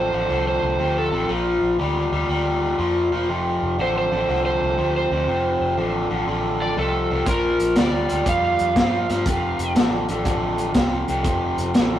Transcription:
Already playing: A1 C5
0.12 A1 F2 D3
0.28 C2 F2 D3
0.48 C5
0.62 C2
0.78 D2 F2 C3
0.98 A4
1.12 A1 F2 C3
1.28 A#1 A#2 F3
1.61 A#1
1.78 D2 A#2 G3
2.11 D2 A#2 G3
2.28 D2 A#2 G3
2.78 F2 A#2 F3
3.11 E1 A#2 F3
3.28 F1 F2 C3
3.62 F1
3.78 A1 F2 D3 C5
3.98 C5
4.12 A1 F2 D3
4.27 C2 F2 D3
4.46 C5
4.61 C2
4.77 D2 F2 C3
4.97 C5
5.10 D2 F2 C3
5.27 F1 F2 C3
5.60 F1
5.76 A1 F2 D3
6.09 A1 F2 D3
6.26 A1 F2 D3
6.62 D5
6.76 C2 F2 C3 A4
7.10 C2 F2 C3
7.26 A#1 A#2 F3 A#4, kick, closed hi-hat
7.60 A#1, closed hi-hat
7.76 D2 A#2 G3 D5, snare, closed hi-hat
8.09 D2 A#2 G3, closed hi-hat
8.26 F2 A#2 G3 F5, kick, closed hi-hat
8.59 F2, closed hi-hat
8.76 G2 A#2 F3, kick, snare, closed hi-hat
9.09 G2 A#2 F3, snare, closed hi-hat
9.26 F1 F2 C3, kick, closed hi-hat
9.59 F1, closed hi-hat
9.75 A1 F2 D3, snare, closed hi-hat
10.09 A1 F2 D3, closed hi-hat
10.25 A1 F2 D3, kick, closed hi-hat
10.58 closed hi-hat
10.74 C2 F2 C3, kick, snare, closed hi-hat
11.08 C2 F2 C3, closed hi-hat
11.23 F1 F2 C3, kick, closed hi-hat
11.57 F1, closed hi-hat
11.74 A1 F2 D3, snare, closed hi-hat

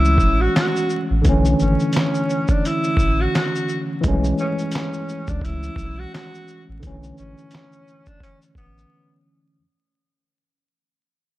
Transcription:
Already playing: C#2 E3 G#3 A3 C#4 E4
0.05 shaker
0.18 A1, kick, shaker
0.41 F#4
0.56 F#4, snare, clap, closed hi-hat, shaker
0.76 shaker
0.90 shaker
1.10 A1
1.22 D3 E3, kick, closed hi-hat, shaker
1.26 B1 A3 C#4
1.45 shaker
1.59 G#1 C#4, shaker
1.80 shaker
1.93 snare, closed hi-hat, shaker
1.97 clap
2.14 shaker
2.30 shaker
2.48 D4, kick, shaker
2.65 E4, closed hi-hat, shaker
2.84 shaker
2.97 A1, kick, shaker
3.21 F#4
3.35 F#4, snare, clap, closed hi-hat, shaker
3.55 shaker
3.69 shaker
4.01 B1 E3 G#3, kick, closed hi-hat, shaker
4.06 A3 C#4
4.24 shaker
4.38 C#4, shaker
4.59 shaker
4.72 snare, closed hi-hat, shaker
4.76 clap
4.93 shaker
5.09 shaker
5.27 C#2 D4, kick, shaker
5.41 E4, kick, closed hi-hat, shaker
5.63 shaker
5.76 B1, kick, shaker
5.99 F#4
6.14 F#4, snare, clap, closed hi-hat, shaker
6.35 shaker
6.48 shaker
6.69 A1
6.80 D3 E3, kick, closed hi-hat, shaker
6.84 B1 A3 C#4
7.03 shaker
7.18 G#1 C#4, shaker
7.38 shaker
7.51 snare, closed hi-hat, shaker
7.55 clap
7.72 shaker
7.88 shaker
8.06 D4, kick, shaker
8.20 C#4, kick, closed hi-hat, shaker
8.42 shaker
8.55 A1 B3, kick, shaker
8.78 shaker

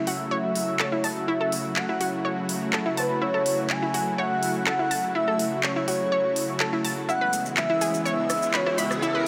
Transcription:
Already playing: C#3 F#3 A3 E4 F#4 E5
0.07 F#1 F#4, open hi-hat
0.20 F#1
0.31 C#5 E5
0.44 F#1
0.55 F#1, open hi-hat
0.68 F#1
0.79 A4 C#5, clap
0.92 F#1 E4
1.04 F#1 E5 A5, open hi-hat
1.16 F#1
1.28 E4 E5
1.41 F#1 A4
1.52 F#1, open hi-hat
1.65 F#1
1.76 F#5, clap
1.89 F#1 E4
2.01 F#1 F#4, open hi-hat
2.13 F#1
2.25 C#5
2.38 F#1
2.49 F#1, open hi-hat
2.62 F#1
2.73 A4, clap
2.86 F#1 E4
2.97 F#1 B4 A5, open hi-hat
3.10 F#1
3.22 E4 C#5
3.34 F#1 A4
3.46 F#1, open hi-hat
3.58 F#1
3.70 G#5, clap
3.82 F#1 E4
3.94 F#1 F#4, open hi-hat
4.07 F#1
4.18 C#5 F#5
4.31 F#1
4.43 F#1, open hi-hat
4.55 F#1
4.66 A4 F#5, clap
4.79 F#1 E4
4.91 F#1 A5, open hi-hat
5.04 F#1
5.15 E4 E5
5.28 F#1 A4
5.39 F#1, open hi-hat
5.52 F#1
5.63 C#5, clap
5.76 F#1 E4
5.88 F#1 F#4 C#5, open hi-hat
6.00 F#1
6.12 C#5
6.25 F#1
6.36 F#1, open hi-hat
6.49 F#1
6.60 A4, clap
6.73 E4
6.84 F#1 A5, open hi-hat
6.97 F#1
7.08 E3 G#3 B3 E4 F#5, riser, shaker
7.21 F#1 B4
7.33 F#1, open hi-hat, shaker
7.45 F#1, shaker
7.57 E5, clap, shaker
7.70 F#1 E4
7.81 F#1 G#4, open hi-hat, shaker
7.94 F#1, shaker
8.05 C#5 E5, shaker
8.18 F#1
8.30 F#1, cross-stick, open hi-hat, shaker
8.42 F#1, shaker
8.54 B4 C#5, clap, shaker
8.66 F#1 E4, cross-stick
8.78 F#1 E5 B5, open hi-hat, shaker
8.91 F#1, cross-stick, shaker
9.02 E4 E5, shaker
9.15 F#1 B4

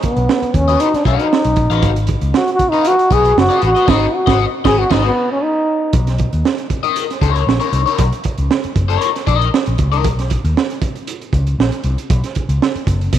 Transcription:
0.03 B3, kick, closed hi-hat
0.17 B1, closed hi-hat
0.29 snare
0.42 muted picked electric bass stroke, closed hi-hat
0.54 D#2 C#4, kick, closed hi-hat
0.68 F#4 B4 D#5, closed hi-hat
0.80 D#4, closed hi-hat
0.94 D4, muted picked electric bass stroke, snare, closed hi-hat
1.05 B1 C#4 F#4 B4 F5, kick, closed hi-hat
1.19 D#4, closed hi-hat
1.33 snare
1.44 B1, closed hi-hat
1.56 A#1, kick, closed hi-hat
1.70 A1 F#4 B4 F5, closed hi-hat
1.83 G#1, kick, closed hi-hat
1.96 closed hi-hat
2.07 kick, closed hi-hat
2.21 C#2, closed hi-hat
2.34 F#4, snare
2.48 closed hi-hat
2.53 F#4
2.59 kick, closed hi-hat
2.69 D#4 F5
2.73 F#4 B4, closed hi-hat
2.85 F#4, closed hi-hat
2.99 closed hi-hat
3.11 B1 F#4 G#4 B4 D#5, kick, closed hi-hat
3.25 closed hi-hat
3.37 F#1 F#4, snare
3.49 F#4 B4 D#5, closed hi-hat
3.62 A1 F#4, closed hi-hat
3.75 F#4 B4 D#5, closed hi-hat
3.86 G#1 F#4 B4 D#5, kick, snare, crash
3.90 D#4
4.14 F#4
4.27 G#1 F#4 B4 D#5, kick, snare
4.65 G#1 F#4 G#4 B4 D#5, kick, snare
4.79 F#4
4.90 G#1 D#4 F#4 B4 D#5, kick, snare, crash
5.06 B3
5.31 C#4
5.43 D#4
5.93 B1, kick, closed hi-hat
6.07 snare, closed hi-hat
6.18 kick, closed hi-hat
6.33 D#2, closed hi-hat
6.45 snare
6.58 closed hi-hat
6.70 kick, closed hi-hat
6.83 D#4 A#4 D#5, closed hi-hat
6.96 closed hi-hat
7.10 snare, closed hi-hat
7.21 C#2 D#4 A#4 C#5, kick, closed hi-hat
7.36 closed hi-hat
7.47 A#1, snare
7.60 D#4 A#4 C#5, closed hi-hat
7.72 C2, closed hi-hat
7.86 D#4 A#4 C#5, closed hi-hat
7.98 B1, kick, closed hi-hat
8.12 closed hi-hat
8.24 kick, closed hi-hat
8.38 C#2, closed hi-hat
8.51 snare
8.64 muted picked electric bass stroke, closed hi-hat
8.76 F#1, kick, closed hi-hat
8.89 D#4 A#4 C#5, closed hi-hat
9.01 closed hi-hat
9.16 snare, closed hi-hat
9.27 A#1 D#4 A#4 D#5, kick, closed hi-hat
9.41 closed hi-hat
9.54 snare
9.66 A#1, closed hi-hat
9.78 C#2, kick, closed hi-hat
9.92 C2 D#4 A#4 D#5, closed hi-hat
10.04 B1, kick, closed hi-hat
10.19 snare, closed hi-hat
10.30 kick, closed hi-hat
10.44 D#2, closed hi-hat
10.57 snare
10.70 closed hi-hat
10.82 kick, closed hi-hat
10.96 closed hi-hat
11.07 closed hi-hat
11.22 closed hi-hat
11.33 C#2, kick, closed hi-hat
11.47 closed hi-hat
11.59 A#1, snare
11.72 closed hi-hat
11.84 C2, closed hi-hat
11.98 closed hi-hat
12.10 B1, kick, closed hi-hat
12.24 snare, closed hi-hat
12.35 kick, closed hi-hat
12.49 C#2, closed hi-hat
12.62 snare
12.75 muted picked electric bass stroke, closed hi-hat
12.87 F#1, kick, closed hi-hat
13.01 closed hi-hat
13.13 B2, kick, closed hi-hat

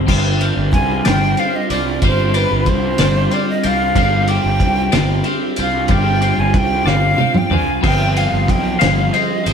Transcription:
0.07 G1 G3 C4 D4 F4 C5 D5, kick, crash
0.39 F4 C5 D5, ride
0.57 G1
0.72 C2 G#5, kick, ride
1.05 G1 G3 C4 F4 C5 D5 G5, snare, ride
1.37 C4 F4 C5 D5 F5, ride
1.56 D#5
1.70 C2 C5 D5, ride
1.74 F4
2.02 G1 G3 C4 F4 C5 D5, kick, ride
2.06 C5
2.34 F4 B4 C5 D5, ride
2.51 G1
2.66 C2 C5, kick, ride
2.98 G1 F4 C5 D5, snare, ride
3.02 G3 C4
3.31 C4 F4 C5 D5, ride
3.50 D#5
3.63 C2 F4 C5 D5 F5, ride
3.95 G1 G3 C4 F4 C5 D5, kick, ride
4.27 C5 D5 G5, ride
4.32 F4
4.44 G1
4.60 C2, kick, ride
4.92 G1 G3 C4 F4 C5 D5, snare, ride
5.24 C4 F4 C5 D5, ride
5.56 C2 F4 C5 D5, ride
5.61 F5
5.88 G1 G3 C4 F4 C5 D5, kick, ride
5.93 G5
6.21 F4 C5 D5, ride
6.38 G1 G#5
6.53 C2 G5, kick, ride
6.85 G1 G3 C4 F4 C5 D5 F5, snare
7.17 C4 F4 C5 D5, high tom
7.34 G5, mid tom
7.50 C2 F4 C5 D5 G#5, mid tom
7.81 G1 F3 G3 C4 G#4 C5 F5, kick, crash
7.85 G5
8.13 G#4 C5 F5, ride
8.32 G1
8.48 B1 G5, kick, ride
8.79 G1 G3 C4 G#4 C5 F5, snare, ride
9.11 C4 G#4 C5 D#5 F5, ride
9.44 G#1 G#4 C5 F5, ride

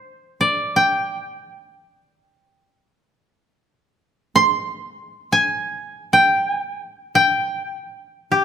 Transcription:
Already playing: C5 D5
0.41 D5
0.76 G5
4.36 C6
5.32 G#5
6.13 G5
7.15 G5
8.32 G4

